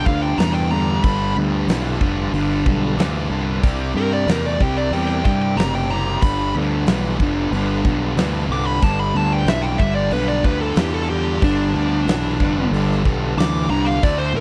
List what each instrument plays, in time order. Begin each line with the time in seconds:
0.02 fingered electric bass D2, tonewheel organ D4 F4 A4 B4, lead electric guitar F5, kick
0.07 distorted electric guitar G2 D3
0.22 lead electric guitar G5
0.34 fingered electric bass E2, tonewheel organ D4 F4 A4 B4, lead electric guitar A#5
0.39 distorted electric guitar G2 E3, snare, open hi-hat
0.53 lead electric guitar G5
0.70 distorted electric guitar G2 D3, tonewheel organ A3 D4 F4 D5, lead electric guitar A#5
1.00 fingered electric bass G1, tonewheel organ D4 F4 A4 B4, lead electric guitar B5, kick, open hi-hat
1.05 distorted electric guitar G2 D3
1.34 fingered electric bass D2, distorted electric guitar G2 D3, tonewheel organ D4 F4 A4 B4
1.66 fingered electric bass B1, distorted electric guitar G2, tonewheel organ D4 F4 A4 B4, open hi-hat
1.70 distorted electric guitar E3, snare
1.97 fingered electric bass F1, tonewheel organ D4 F4 A4 B4, kick
2.01 distorted electric guitar G2 D3
2.30 fingered electric bass G1, distorted electric guitar G2, tonewheel organ D4 F4 A4 B4, open hi-hat
2.35 distorted electric guitar D3
2.64 fingered electric bass B1, distorted electric guitar G2 D3, tonewheel organ D4 F4 A4 B4, kick
2.97 fingered electric bass D2, distorted electric guitar G2 E3, tonewheel organ D4 F4 A4 D5, snare, open hi-hat
3.29 fingered electric bass C2, distorted electric guitar G2 D3, tonewheel organ D4 F4 A4 B4
3.61 fingered electric bass C2, distorted electric guitar C3 G3, tonewheel organ D4 E4 G4 A#4, kick, open hi-hat
3.94 fingered electric bass G2, distorted electric guitar C3 G3, tonewheel organ D4 E4 G4 A#4, lead electric guitar A#4
4.13 lead electric guitar D5
4.26 fingered electric bass E2, distorted electric guitar C3 A3, tonewheel organ D4 E4 G4 A#4, lead electric guitar A#4, snare, open hi-hat
4.46 lead electric guitar D5
4.60 fingered electric bass C2, distorted electric guitar C3 G3, tonewheel organ D4 E4 G4 A#4, lead electric guitar G5, kick
4.77 lead electric guitar D5
4.91 fingered electric bass E2, distorted electric guitar C3 G3, tonewheel organ D4 E4 G4 A#4, lead electric guitar G5, open hi-hat
5.08 lead electric guitar G5
5.23 fingered electric bass G2, distorted electric guitar C3 G3, tonewheel organ D4 E4 G4 A#4, lead electric guitar G5, kick
5.42 lead electric guitar G5
5.56 fingered electric bass F#1, distorted electric guitar C3 A3, tonewheel organ D4 E4 G4 A#4, lead electric guitar A#5, snare, open hi-hat
5.75 lead electric guitar G5
5.87 distorted electric guitar C3, tonewheel organ D4 E4 G4 C5, lead electric guitar A#5
5.91 distorted electric guitar G3
6.08 snare
6.21 fingered electric bass G1, distorted electric guitar G2 D3, tonewheel organ B3 D4 F4 A4, lead electric guitar B5, kick, open hi-hat
6.54 fingered electric bass D2, distorted electric guitar G2 D3, tonewheel organ B3 D4 F4 A4
6.86 fingered electric bass B1, distorted electric guitar G2 E3, tonewheel organ B3 D4 F4 B4, snare, open hi-hat
7.19 fingered electric bass F1, distorted electric guitar G2 D3, tonewheel organ B3 D4 F4 A4, kick
7.51 fingered electric bass G1, distorted electric guitar G2 D3, tonewheel organ B3 D4 F4 B4, open hi-hat
7.84 fingered electric bass B1, distorted electric guitar G2 D3, tonewheel organ B3 D4 F4 A4, kick
8.15 fingered electric bass D2, distorted electric guitar G2 E3, tonewheel organ B3 D4 F4 A4, snare, open hi-hat
8.49 fingered electric bass C2, distorted electric guitar G2 D3, tonewheel organ B3 D4 F4 B4, lead electric guitar D6
8.66 lead electric guitar B5
8.81 fingered electric bass G1, distorted electric guitar G2 D3, tonewheel organ B3 D4 F4 G4, lead electric guitar A5, kick, open hi-hat
8.99 lead electric guitar B5
9.13 fingered electric bass D2, distorted electric guitar G2 D3, tonewheel organ B3 D4 F4 A4, lead electric guitar A5
9.33 lead electric guitar G5
9.45 fingered electric bass B1, distorted electric guitar G2 E3, tonewheel organ B3 D4 F4 A4, lead electric guitar E5, snare, open hi-hat
9.62 lead electric guitar G5
9.78 fingered electric bass G1, distorted electric guitar G2 D3, tonewheel organ B3 D4 F4 G4, lead electric guitar E5, kick
9.95 lead electric guitar D5
10.10 fingered electric bass B1, distorted electric guitar G2 D3, tonewheel organ B3 D4 F4 B4, lead electric guitar B4, open hi-hat
10.28 lead electric guitar D5
10.43 fingered electric bass D2, distorted electric guitar G2 D3, tonewheel organ B3 D4 F4 A4, lead electric guitar B4, kick
10.61 lead electric guitar A4
10.74 fingered electric bass E2, distorted electric guitar G2, tonewheel organ B3 D4 F4 A4, snare, open hi-hat
10.78 distorted electric guitar E3, lead electric guitar G4
10.94 lead electric guitar A4
11.08 distorted electric guitar G2 D3, tonewheel organ B3 D4 F4 A4, lead electric guitar G4
11.40 fingered electric bass G1, distorted electric guitar G2 D3, tonewheel organ B3 D4 F4 A4, lead electric guitar D4, kick, open hi-hat
11.74 fingered electric bass D2, distorted electric guitar G2 D3, tonewheel organ B3 D4 F4 G4
12.06 fingered electric bass B1, distorted electric guitar G2 E3, tonewheel organ B3 D4 F4 A4, snare, open hi-hat
12.39 distorted electric guitar G2 D3, tonewheel organ B3 D4 F4 B4, kick
12.71 fingered electric bass G1, distorted electric guitar G2 D3, tonewheel organ B3 D4 F4 A4, open hi-hat
12.92 snare
13.04 fingered electric bass B1, distorted electric guitar G2 D3, tonewheel organ B3 D4 F4 A4, kick
13.35 fingered electric bass D2, distorted electric guitar G2 E3, tonewheel organ B3 D4 F4 A4, lead electric guitar D6, open hi-hat
13.40 snare
13.69 fingered electric bass C2, distorted electric guitar G2 D3, tonewheel organ B3 D4 F4 G4, lead electric guitar A#5
13.85 lead electric guitar F5
13.90 snare
14.02 fingered electric bass D2, distorted electric guitar D3 A3, tonewheel organ C4 E4 F#4 A4, lead electric guitar D5, kick, open hi-hat
14.18 lead electric guitar C5
14.33 fingered electric bass A2, distorted electric guitar D3 A3, tonewheel organ C4 E4 F#4 A4, lead electric guitar A#4